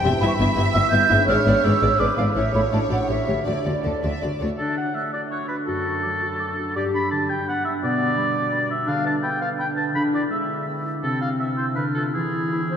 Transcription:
Already playing: E2 E4 G4 C5 G5
0.03 E1 E2 G2 C4 G4 E5
0.08 B3
0.12 E4
0.16 B4
0.21 G1 G2 B3 E4 E5 B5
0.28 C#6
0.35 G2 B5
0.40 G1 B3 E4 E5
0.55 G1 G2 B3 E4 E5
0.73 G1 G2 B3 E4 E5 E6
0.90 G1 G2 B3 E4 E5 G6
1.09 G1 G2 G#2 B3 E4 E5
1.15 B3
1.19 D4
1.24 G#1 B4
1.28 G#2 B3 G#4 C#5 D5 F6
1.45 G#1 G#2 B3 G#4 D5
1.63 G#1 G#2 B3 G#4 D5 E6
1.81 G#1 G#2 B3 G#4 D5
1.99 G#1 G#2 B3 G#4 B4 D5 D6
2.17 G#1 G#2 A2 B3 G#4 D5 F5
2.22 C#4
2.26 E4
2.31 A4
2.35 A1 A2 A3 E4 C#5 E5
2.53 A1 A2 A3 E4 C#5 B5
2.58 D4
2.63 F#4
2.71 A1 A2 A3 F#4 D5 A5
2.89 A1 A2 A3 F#4 D5 F#5
2.95 C#4
2.99 G4 F#5
3.04 A4
3.08 A1 A2 A3 G4 C#5 E5
3.27 A1 A2 D3 A3 G4 C#5
3.32 D4
3.37 F#4
3.41 A4 D5
3.46 D2 D3 A3 F#4 D5
3.54 C#5
3.62 D2 D3 F#4 D5
3.66 A3
3.83 D2 D3 A3 F#4 A4 D5
4.03 D2 D3 A3 F#4 D5 E5
4.21 D2 D3 A3 F#4 D5
4.40 D2 D3 A3 F#4 C#5 D5
4.58 D3 D4 A4
4.77 F#4 F#5
4.94 A3 E5 F#6
5.13 F#4 D5
5.31 D4 C#5 F#6
5.48 F#4 B4
5.66 F#2 F#4 A4
5.87 F#4
6.03 F#3 D6
6.22 F#4
6.39 D4 D6
6.58 F#4
6.76 G2 G4 D5
6.94 D4 B5
7.11 D3 A5 B5
7.29 D4 G5
7.47 B3 F#5 B5
7.65 D4 E5
7.83 B2 B3 D5
7.99 D4
8.17 G3 B5
8.35 D4
8.52 B3 B5
8.69 D4 E5
8.86 D3 D4 F5
9.05 B4 A5
9.22 B3 G5 B5
9.41 B4 F5
9.59 D4 G5 B5
9.76 B4 A5
9.95 D3 D4 B5
10.13 E4 D5
10.30 G#3 E5 E6
10.49 E4
10.66 B3 E6
10.85 E4
11.03 C3 C4 A4 E6
11.21 E4 F5
11.39 C4 E5 E6
11.57 E4 C5
11.75 D3 D4 B4 F6
11.94 F4 A4
12.13 E3 E4 G#4 E6
12.34 E4
12.53 B3 E4
12.71 E4 C5

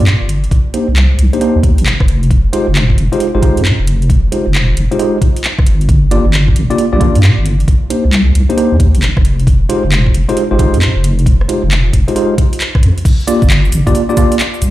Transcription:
0.00 G2
0.07 clap, closed hi-hat
0.21 G1
0.29 closed hi-hat
0.44 closed hi-hat
0.51 kick, closed hi-hat
0.74 A#3 D4 D#4 G4 C5, closed hi-hat
0.88 C2
0.96 clap, closed hi-hat
1.19 C2, closed hi-hat
1.33 A#3 D4 D#4 G4 C5, closed hi-hat
1.41 A#3 D4 D#4 G4 C5, closed hi-hat
1.56 D#2
1.63 kick, closed hi-hat
1.78 G1, closed hi-hat
1.86 clap, closed hi-hat
2.00 F1, kick, cross-stick
2.08 closed hi-hat
2.23 closed hi-hat
2.31 kick, closed hi-hat
2.53 G#3 D#4 F4 G4 C5, closed hi-hat
2.68 F1
2.75 clap, closed hi-hat
2.90 kick
2.98 F1, closed hi-hat
3.12 G#3 D#4 F4 G4 C5, closed hi-hat
3.20 closed hi-hat
3.35 G#1 G#3 D#4 F4 G4 C5
3.42 G#3 D#4 F4 G4 C5, kick, closed hi-hat
3.57 F2, closed hi-hat
3.65 clap, closed hi-hat
3.80 F1
3.87 closed hi-hat
4.02 closed hi-hat
4.10 kick, closed hi-hat
4.32 G#3 D#4 F4 G4 C5, closed hi-hat
4.47 F1
4.55 clap, closed hi-hat
4.77 F1, closed hi-hat
4.91 G#3 D#4 F4 G4 C5, closed hi-hat
4.99 G#3 D#4 F4 G4 C5, closed hi-hat
5.22 kick, closed hi-hat
5.36 closed hi-hat
5.44 clap, closed hi-hat
5.59 kick, cross-stick
5.66 G1, closed hi-hat
5.81 closed hi-hat
5.89 kick, closed hi-hat
6.11 A#3 D4 F4 G4 D5, closed hi-hat
6.26 G1
6.34 clap, closed hi-hat
6.48 kick
6.56 G1, closed hi-hat
6.70 A#3 D4 F4 G4 D5, closed hi-hat
6.78 closed hi-hat
6.93 A#1 A#3 D4 F4 G4 D5
7.00 A#3 D4 F4 G4 D5, kick, closed hi-hat
7.15 G2, closed hi-hat
7.23 clap, closed hi-hat
7.38 G1
7.46 closed hi-hat
7.60 closed hi-hat
7.68 kick, closed hi-hat
7.90 A#3 D4 D#4 G4 C5, closed hi-hat
8.05 C2
8.13 clap, closed hi-hat
8.35 C2, closed hi-hat
8.49 A#3 D4 D#4 G4 C5, closed hi-hat
8.57 A#3 D4 D#4 G4 C5, closed hi-hat
8.72 D#2
8.80 kick, closed hi-hat
8.95 G1, closed hi-hat
9.02 clap, closed hi-hat
9.17 F1, kick, cross-stick
9.25 closed hi-hat
9.39 closed hi-hat
9.47 kick, closed hi-hat
9.69 G#3 D#4 F4 G4 C5, closed hi-hat
9.84 F1
9.92 clap, closed hi-hat
10.06 kick
10.14 F1, closed hi-hat
10.29 G#3 D#4 F4 G4 C5, closed hi-hat
10.37 closed hi-hat
10.51 G#1 G#3 D#4 F4 G4 C5
10.59 G#3 D#4 F4 G4 C5, kick, closed hi-hat
10.74 F2, closed hi-hat
10.82 clap, closed hi-hat
10.96 F1
11.04 closed hi-hat
11.19 closed hi-hat
11.26 kick, closed hi-hat
11.41 cross-stick
11.49 G#3 D#4 F4 G4 C5, closed hi-hat
11.63 F1
11.71 clap, closed hi-hat
11.93 F1, kick, closed hi-hat
12.08 G#3 D#4 F4 G4 C5, closed hi-hat
12.16 G#3 D#4 F4 G4 C5, closed hi-hat
12.38 kick, closed hi-hat
12.53 closed hi-hat
12.61 clap, closed hi-hat
12.75 kick, cross-stick
12.83 F2, closed hi-hat
12.98 closed hi-hat
13.05 kick, closed hi-hat, crash, cabasa
13.20 cabasa
13.27 A#3 D4 F4 G4 D5, closed hi-hat, cabasa
13.42 G1, kick, cabasa
13.50 clap, closed hi-hat, cabasa
13.65 cabasa
13.72 G1, closed hi-hat, cabasa
13.87 A#3 D4 F4 G4 D5, kick, closed hi-hat, cabasa
13.95 closed hi-hat, cabasa
14.09 A#3 D4 F4 G4 D5, cabasa
14.17 A#3 D4 F4 G4 D5, kick, closed hi-hat, cabasa
14.32 closed hi-hat, cabasa
14.40 clap, closed hi-hat, cabasa
14.54 cabasa
14.62 C2, closed hi-hat, cabasa

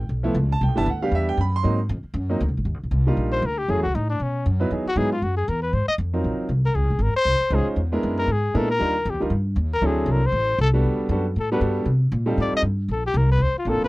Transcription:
0.09 B1
0.23 F3 A3 B3 E4
0.35 C#2
0.52 A5
0.61 C2 G5
0.68 B1
0.76 G1 G3 B3 D4 E4 A5
0.86 D2 F#5
1.02 G3 B3 D4 G4 F5
1.11 E2 E5
1.29 G5
1.37 F#2 B5
1.56 C6
1.63 G#2 F#3 A#3 C4 D#4
1.89 F2
2.03 muted upright bass stroke
2.14 F#2
2.29 F#3 A#3 C4 D#4
2.40 D2
2.48 C2
2.57 G#1
2.65 D#2
2.74 D2
2.83 A#1
2.91 C2
3.07 G3 A#3 D4 D#4 F4
3.17 A#1
3.32 C5
3.42 D2 A#4
3.58 G4
3.68 F#2 F#3 A3 C#4 E4 G#4
3.77 E2
3.83 C#2 F#4
3.95 A2 D#4
4.10 D4
4.20 B2 C#4
4.46 F#2
4.60 F#3 B3 D#4 E4 B4
4.71 E2 F#3 B3 D#4 E4 G#4
4.85 F#4, muted upright bass stroke
4.96 G#2 F#3 B3 D#4 E4 G#4
5.12 F4
5.22 F#2 F#4
5.37 G#4
5.48 E2 A#4
5.62 B4
5.73 G#2 C5
5.88 D#5, muted upright bass stroke
5.98 F2
6.13 F#3 C4 D#4 F4 A#4
6.24 A#1
6.39 muted upright bass stroke
6.49 C2
6.66 A#4
6.75 C#2 G#4
6.84 C2
6.90 G#1
6.99 G#1 A#4
7.14 C5, muted upright bass stroke
7.25 C2
7.50 C#2 G#3 C#4 D#4 F4 C5
7.55 G#4
7.66 muted upright bass stroke
7.76 E2
7.92 G#3 B3 D4 E4 A#4
8.03 F#2
8.18 A#4
8.27 G#2
8.32 G#4
8.54 A#2 G#3 B3 D4 E4 A4 A#4
8.71 A#4
8.79 D#2 G3 D4 D#4 F4 A#4
9.05 F2
9.10 D#2 G4
9.20 D2 G3 D4 D#4 F4 A#4
9.30 G2
9.56 D#2
9.74 A#4
9.81 D2 F#3 C4 D4 E4 A4
9.86 G#4
10.06 C2
10.12 A#4
10.26 C5
10.32 A1
10.58 C2 A4
10.73 G3 B3 D4 F#4 A4
10.84 D2
11.09 F#2 G3 B3 D4 F#4 A4
11.36 A2 A4
11.52 G3 B3 D4 F#4 A4 B4
11.61 G2
11.85 C3
12.12 A#2
12.26 G3 C4 D#4 F4 A4
12.37 A2 D5
12.52 muted upright bass stroke
12.56 D#5
12.62 G2
12.88 A#1 A4
13.06 G4
13.14 C2 A#4
13.31 B4
13.39 D2 C5
13.58 F4
13.65 A1 A#3 C4 D4 F4 A4
13.69 A4
13.74 F1
13.82 D1 B4

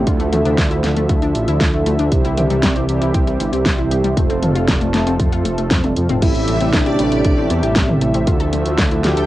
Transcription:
Already playing: A3
0.07 D2 D3 F3 A3 D4 E4 F4 A4 E5, kick, closed hi-hat
0.19 D2 A3, closed hi-hat
0.32 D2 A3, closed hi-hat, mid tom
0.45 D2 D3 A3 D4 E4 F4 C5, closed hi-hat
0.58 D2, kick, snare, closed hi-hat
0.71 D2 E4, closed hi-hat
0.84 D2 D3 A3 D4 E4 F4 A4, snare, closed hi-hat
0.97 D2 A3, closed hi-hat
1.09 D2 A3, kick, closed hi-hat
1.22 D2 D3 A3 D4 E4 F4 A4, closed hi-hat
1.35 A1, closed hi-hat
1.48 D2 E4, closed hi-hat
1.61 D2 F4, kick, snare, closed hi-hat
1.73 D2 D3 A3 D4 E4 F4 A4
1.86 D2 A3, closed hi-hat
1.99 D2 D4, closed hi-hat
2.12 C2 C3 E3 G3 C4 E4 G4 C5, kick, closed hi-hat
2.25 C2 E4, closed hi-hat
2.37 C2 G4, closed hi-hat, mid tom
2.50 C2 C3 G3 C4 E4 G4 D5, closed hi-hat
2.63 C2 G3, kick, snare, closed hi-hat
2.76 C2 C4, closed hi-hat
2.89 C2 C3 G3 C4 E4 G4 C5, closed hi-hat
3.02 C2 E4, closed hi-hat
3.14 C2 G4, kick, closed hi-hat
3.27 C2 C3 G3 C4 E4 G4 C5, closed hi-hat
3.40 G1 G3, closed hi-hat
3.53 C2 C4, closed hi-hat
3.66 C2, kick, snare, closed hi-hat
3.78 C2 C3 G3 C4 E4 G4 C5
3.91 C2 G4, closed hi-hat
4.04 C2 G3, closed hi-hat
4.17 F1 F3 A3 C4 F4 A4 C5, kick, closed hi-hat
4.30 F1 C4, closed hi-hat
4.43 F1, closed hi-hat, mid tom
4.55 F1 A3 C4 F4 A4 D5, closed hi-hat
4.68 F1 A4, kick, snare, closed hi-hat
4.81 F1 A3, closed hi-hat
4.94 F1 A3 C4 F4 A4 C5, snare, closed hi-hat
5.07 F1 C4, closed hi-hat
5.20 F2, kick, closed hi-hat
5.32 F2 A3 C4 F4 A4 C5, closed hi-hat
5.45 F1 A3, closed hi-hat
5.58 F1 A3 C4 F4 A4 C5, closed hi-hat
5.71 F2 A4, kick, snare, closed hi-hat, high tom
5.84 F1 A3 C4 F4 A4 D5, closed hi-hat, high tom
5.96 F2 A2 A3 C4 F4 A4 F5, closed hi-hat
6.09 F1 C4, closed hi-hat, mid tom
6.22 A1 A2 C3 G3 A3 C4 E4 G4 A4 E5, kick, closed hi-hat, crash
6.35 A1, closed hi-hat
6.48 A1 A3, closed hi-hat
6.61 A1 A2 A3 C4 E4 G4 C5, closed hi-hat
6.73 A1 D4 E4 D5, kick, snare, closed hi-hat
6.86 A1 G4, closed hi-hat
6.99 A1 A2 G3 A3 C4 E4 G4 A4, closed hi-hat
7.12 A1, closed hi-hat
7.25 A1 A3, kick, closed hi-hat
7.37 A1 A2 A3 C4 E4 G4 A4
7.50 E2 E4, closed hi-hat
7.63 A1 G4, closed hi-hat
7.76 A1 G3, kick, snare, closed hi-hat
7.88 A1 A2 A3 C4 E4 G4 A4, mid tom
8.01 A1 A3, closed hi-hat
8.14 A1 C4, closed hi-hat
8.27 D2 D3 F3 A3 D4 E4 F4 A4, kick, closed hi-hat
8.40 D2 A4, closed hi-hat
8.53 D2 A3, closed hi-hat
8.66 D2 D3 A3 D4 E4 F4 C5, closed hi-hat
8.78 D2 D4, kick, snare, closed hi-hat
8.91 D2 E4, closed hi-hat
9.04 D2 D3 A3 D4 E4 F4 G4 A4 G5, snare, closed hi-hat
9.17 D2 A4, closed hi-hat

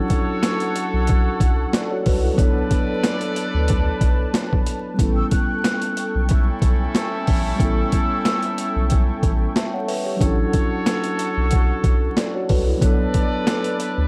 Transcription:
Already playing: F#3 C#4 D4 E4 F#4 A4 C#5 F#5
0.10 kick, closed hi-hat
0.43 snare, closed hi-hat
0.60 closed hi-hat
0.76 closed hi-hat
0.94 B1
1.07 kick, closed hi-hat
1.40 B1, kick, closed hi-hat
1.73 A4 D5, snare, closed hi-hat
1.91 F#4 C#5
2.06 C2 F#4 B4, kick, open hi-hat
2.24 E4 A4
2.33 F#3 B3
2.38 B1 D4 A4 B4 C#5 D5 A5, kick, closed hi-hat
2.43 A4
2.71 kick, closed hi-hat
3.04 snare, closed hi-hat
3.21 closed hi-hat
3.36 closed hi-hat
3.54 D2
3.68 kick, closed hi-hat
4.01 B1, kick, closed hi-hat
4.34 snare, closed hi-hat
4.53 kick
4.67 closed hi-hat
4.94 G3 B3
4.99 A1 C#4 E4 A4 G5 C#6, kick, closed hi-hat
5.03 A4
5.16 E6
5.31 F#6, kick, closed hi-hat
5.64 snare, closed hi-hat
5.82 closed hi-hat
5.97 closed hi-hat
6.15 B1
6.29 C#4 E4 A4, kick, closed hi-hat
6.62 B1, kick, closed hi-hat
6.95 snare, closed hi-hat
7.27 A#1, kick, open hi-hat
7.55 G3 B3
7.60 A1 C#4 E4, kick, closed hi-hat
7.65 A4
7.78 E6
7.92 E6, kick, closed hi-hat
8.25 snare, closed hi-hat
8.43 closed hi-hat
8.58 closed hi-hat
8.76 B1
8.90 kick, closed hi-hat
9.23 A1, kick, closed hi-hat
9.56 E5 A5, snare, closed hi-hat
9.73 C#5 F#5
9.88 B4 E5, open hi-hat
10.05 G4 C#5
10.16 F#3 C#4
10.21 A1 D4 E4 F#4 A4 C#5 F#5, kick, closed hi-hat
10.26 A4
10.53 kick, closed hi-hat
10.86 snare, closed hi-hat
11.04 closed hi-hat
11.19 closed hi-hat
11.37 B1
11.51 kick, closed hi-hat
11.84 B1, kick, closed hi-hat
12.17 A4 D5, snare, closed hi-hat
12.35 F#4 C#5
12.49 C2 F#4 B4, kick, open hi-hat
12.67 E4 A4
12.77 F#3 B3
12.81 B1 D4 A4 B4 C#5 D5 A5, kick, closed hi-hat
12.86 A4
13.14 kick, closed hi-hat
13.47 snare, closed hi-hat
13.64 closed hi-hat
13.80 closed hi-hat
13.98 D2

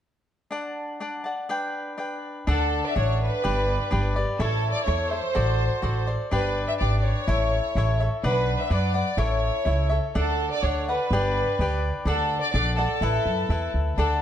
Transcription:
0.51 D4 D5 F#5 A5
1.00 D4 D5 F#5 A5
1.24 D5 F#5 A5
1.49 D4 B4 D5 G5
1.97 D4 B4 D5 G5
2.47 D2 D4 A4 D5 F#5
2.85 D5 E5
2.92 D4 D5
2.96 A1 A4 C#5 D5 F#5
3.23 B4
3.43 G1 D4 G4 B4 D5
3.91 G1 D4 G4 B4 D5
4.16 G4 B4 D5
4.39 A1 E4 A4 C#5 E5
4.72 D5
4.85 E2 E4 A4 C#5 E5
5.09 A4 C5 C#5 E5
5.35 A1 F#4 A4 C5 D5
5.82 A1 F#4 A4 C5 D5
6.07 A4 C5 D5
6.31 G1 D4 G4 B4 D5
6.68 E5
6.79 G#1 D4 G4 B4 D5
6.99 D5
7.04 C#5
7.28 A1 E4 A4 C#5 E5
7.75 A1 E4 A4 C#5 E5
8.00 A4 C#5 E5
8.24 B1 D4 B4 D5 F#5
8.60 E5
8.70 F#2 D4 B4 D5 F#5
8.94 B4 D5 F#5
9.17 A1 E4 A4 C#5 E5
9.65 C#2 E4 A4 C#5 E5
9.89 A4 C#5 E5
10.15 D2 D4 A4 D5 F#5
10.53 D5
10.63 D2 D4 A4 C#5 D5 F#5
10.88 A4 B4 D5 F#5
11.11 G1 D4 G4 B4 D5
11.59 D2 D4 G4 B4 D5
12.05 D2 D4 A4 D5 F#5
12.41 D5
12.52 A#1 D4 A4 D5
12.56 D5 F#5
12.76 A4 D5 F#5
13.01 A1 E4 A4 B4 E5
13.25 F#2
13.49 E2 E4 A4 B4 E5
13.74 D2
13.98 D2 D4 A4 D5 F#5

